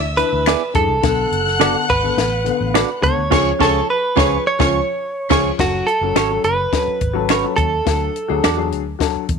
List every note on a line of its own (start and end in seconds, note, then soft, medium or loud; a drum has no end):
0.00 0.21 D2 medium
0.00 0.72 E5 loud
0.00 0.72 E6 loud
0.17 0.49 E3 medium
0.17 0.50 D4 medium
0.17 0.75 B4 medium
0.17 0.50 B4 medium
0.17 closed hi-hat medium
0.33 0.54 D2 medium
0.46 0.61 B3 medium
0.46 0.62 E4 medium
0.46 0.62 G#4 medium
0.46 0.62 D5 medium
0.46 finger snap loud
0.46 snare loud
0.46 closed hi-hat medium
0.74 0.86 F#2 medium
0.74 0.90 E3 medium
0.74 0.91 D4 medium
0.74 0.91 G#4 medium
0.74 1.85 A4 medium
0.74 kick loud
0.74 closed hi-hat medium
0.88 0.99 C2 medium
1.02 1.25 B1 medium
1.02 1.35 D3 medium
1.02 1.35 B3 medium
1.02 1.35 A4 medium
1.02 2.99 F#5 medium
1.02 2.99 F#6 loud
1.02 kick loud
1.02 snare loud
1.02 closed hi-hat medium
1.31 1.74 F#1 medium
1.31 closed hi-hat medium
1.47 snare soft
1.59 1.84 D3 medium
1.59 1.84 B3 medium
1.59 1.74 D4 medium
1.59 1.75 F#4 medium
1.59 1.84 A4 medium
1.59 1.75 A4 loud
1.59 1.75 D5 loud
1.59 finger snap loud
1.59 snare loud
1.59 closed hi-hat medium
1.89 2.11 G#1 loud
1.89 3.03 B4 loud
1.89 kick medium
1.89 closed hi-hat medium
2.03 2.27 D3 medium
2.03 2.27 B3 medium
2.03 2.27 A4 medium
2.17 2.49 A1 medium
2.17 snare loud
2.17 closed hi-hat medium
2.44 2.77 D3 medium
2.44 2.77 B3 medium
2.44 2.78 B4 medium
2.44 closed hi-hat medium
2.61 2.82 A1 medium
2.74 2.89 D4 medium
2.74 2.89 F#4 medium
2.74 2.89 A4 medium
2.74 2.89 D5 medium
2.74 finger snap loud
2.74 snare loud
2.74 closed hi-hat medium
3.01 3.14 C#2 medium
3.01 3.18 D3 medium
3.01 3.19 B3 medium
3.01 3.19 A4 medium
3.01 3.61 C#5 loud
3.01 kick medium
3.01 closed hi-hat medium
3.18 3.28 D2 medium
3.30 3.51 C#2 loud
3.30 3.50 F3 loud
3.30 3.51 C#4 loud
3.30 3.51 F4 loud
3.30 3.51 G#4 loud
3.30 3.51 C#5 medium
3.30 3.51 C#5 loud
3.30 3.51 C#6 medium
3.30 kick loud
3.30 snare loud
3.30 crash medium
3.59 3.80 C#2 loud
3.59 3.79 F3 loud
3.59 3.79 C#4 loud
3.59 3.79 F4 medium
3.59 3.79 G#4 loud
3.59 3.80 G#4 loud
3.59 3.87 A4 medium
3.59 3.80 C#5 medium
3.59 3.80 C#5 loud
3.59 3.80 C#6 loud
3.59 kick loud
3.59 snare loud
3.90 4.47 B4 medium
4.15 4.36 C#2 medium
4.15 4.35 F3 medium
4.15 4.36 C#4 medium
4.15 4.36 C#4 loud
4.15 4.36 F4 loud
4.15 4.36 G#4 loud
4.15 4.37 G#4 loud
4.15 4.37 C#5 loud
4.15 4.37 C#6 medium
4.15 kick loud
4.15 snare loud
4.47 5.28 C#5 medium
4.59 4.79 C#2 loud
4.59 4.78 F3 medium
4.59 4.79 C#4 medium
4.59 4.79 F4 loud
4.59 4.79 G#4 medium
4.59 4.79 C#5 loud
4.59 4.80 C#5 medium
4.59 4.79 C#6 loud
4.59 kick loud
4.59 snare loud
5.30 5.50 C#2 medium
5.30 5.50 F3 loud
5.30 5.50 C#4 loud
5.30 5.50 C#4 medium
5.30 5.50 F4 loud
5.30 5.50 G#4 loud
5.30 5.50 G#4 medium
5.30 5.50 C#5 medium
5.30 5.51 C#5 loud
5.30 5.50 C#6 loud
5.30 kick loud
5.30 snare loud
5.30 crash medium
5.58 5.80 F#1 medium
5.58 5.82 F#3 medium
5.58 5.83 C#4 medium
5.58 5.89 F#4 medium
5.58 5.83 A4 medium
5.58 kick loud
5.58 snare loud
5.58 crash medium
5.87 6.44 A4 loud
5.87 closed hi-hat medium
6.01 6.12 F#1 medium
6.01 6.18 F#3 medium
6.01 6.18 C#4 medium
6.01 6.18 A4 medium
6.15 6.37 G#1 medium
6.15 6.30 C#4 medium
6.15 6.30 F#4 medium
6.15 6.31 A4 medium
6.15 6.31 C#5 medium
6.15 finger snap loud
6.15 snare loud
6.15 closed hi-hat medium
6.30 6.54 F#3 medium
6.30 6.54 C#4 medium
6.30 6.54 A4 medium
6.44 6.65 F#1 medium
6.44 7.56 B4 loud
6.44 closed hi-hat medium
6.73 6.96 F#3 medium
6.73 6.97 C#4 medium
6.73 6.97 A4 medium
6.73 kick medium
6.73 snare loud
6.73 closed hi-hat medium
6.88 muted fingered electric bass stroke soft
7.01 7.43 G#1 medium
7.01 kick medium
7.01 closed hi-hat medium
7.13 7.30 F#3 medium
7.13 7.31 C#4 medium
7.13 7.31 A4 medium
7.29 7.44 C#4 medium
7.29 7.44 F#4 medium
7.29 7.45 A4 medium
7.29 7.45 C#5 medium
7.29 finger snap loud
7.29 snare loud
7.29 closed hi-hat medium
7.43 7.67 F#3 medium
7.43 7.68 C#4 medium
7.43 7.68 A4 medium
7.56 7.79 D#2 medium
7.56 8.67 A4 medium
7.56 kick medium
7.56 closed hi-hat medium
7.85 8.08 D2 loud
7.85 8.10 F#3 medium
7.85 8.10 D4 medium
7.85 8.10 A4 medium
7.85 kick medium
7.85 snare loud
7.85 closed hi-hat medium
8.16 closed hi-hat medium
8.28 8.40 D2 medium
8.28 8.45 F#3 medium
8.28 8.45 D4 medium
8.28 8.45 G#4 loud
8.44 8.73 E2 medium
8.44 8.58 D4 medium
8.44 8.58 F#4 medium
8.44 8.58 A4 medium
8.44 8.58 D5 medium
8.44 finger snap medium
8.44 snare loud
8.44 closed hi-hat medium
8.57 8.81 F#3 medium
8.57 8.81 D4 medium
8.57 8.81 G#4 medium
8.72 8.93 D2 medium
8.72 closed hi-hat medium
8.99 9.23 F#3 medium
8.99 9.24 D4 medium
8.99 9.24 A4 medium
8.99 kick medium
8.99 snare medium
8.99 closed hi-hat medium
9.16 muted fingered electric bass stroke soft
9.29 9.39 E2 medium
9.29 kick medium
9.29 closed hi-hat medium